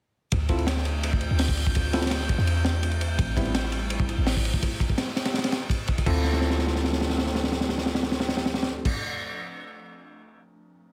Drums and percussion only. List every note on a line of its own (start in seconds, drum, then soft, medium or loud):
0.32 kick loud
0.32 ride medium
0.49 kick loud
0.49 ride medium
0.59 ride soft
0.67 snare loud
0.67 ride medium
0.77 snare soft
0.85 ride medium
1.03 ride medium
1.13 kick medium
1.21 ride medium
1.39 snare loud
1.39 open hi-hat medium
1.49 kick medium
1.57 ride medium
1.67 kick loud
1.75 kick loud
1.75 ride medium
1.93 snare loud
1.93 ride medium
2.01 snare medium
2.01 ride medium
2.06 snare medium
2.06 ride medium
2.11 snare loud
2.11 ride loud
2.20 snare soft
2.29 kick loud
2.29 ride medium
2.38 snare soft
2.47 ride medium
2.65 snare loud
2.65 ride medium
2.83 ride medium
2.91 ride soft
3.01 ride medium
3.19 kick loud
3.19 ride medium
3.37 kick loud
3.37 ride medium
3.45 ride soft
3.55 snare loud
3.55 ride medium
3.64 snare soft
3.72 ride medium
3.90 ride medium
4.00 kick loud
4.09 ride medium
4.27 snare loud
4.27 open hi-hat medium
4.37 kick loud
4.45 ride medium
4.54 kick medium
4.63 kick loud
4.63 ride medium
4.80 kick loud
4.80 ride medium
4.90 kick medium
4.98 snare loud
4.98 ride loud
5.08 snare soft
5.16 snare loud
5.16 ride medium
5.25 snare loud
5.25 ride medium
5.34 snare medium
5.34 ride medium
5.38 snare medium
5.38 ride medium
5.44 snare loud
5.44 ride medium
5.52 snare loud
5.52 ride medium
5.70 kick loud
5.70 ride medium
5.87 kick medium
5.87 ride medium
5.98 kick medium
5.98 ride medium
6.06 kick loud
6.06 crash loud
6.24 snare soft
6.33 snare medium
6.41 snare medium
6.50 snare medium
6.58 snare medium
6.67 snare medium
6.76 snare medium
6.84 snare medium
6.93 snare medium
7.01 snare medium
7.10 snare medium
7.18 snare medium
7.27 snare medium
7.35 snare medium
7.44 snare medium
7.52 snare medium
7.61 snare medium
7.69 snare medium
7.78 snare medium
7.86 snare medium
7.95 snare medium
8.03 snare medium
8.12 snare medium
8.20 snare medium
8.29 snare medium
8.37 snare medium
8.46 snare loud
8.54 snare loud
8.63 snare loud
8.85 kick loud
8.85 crash loud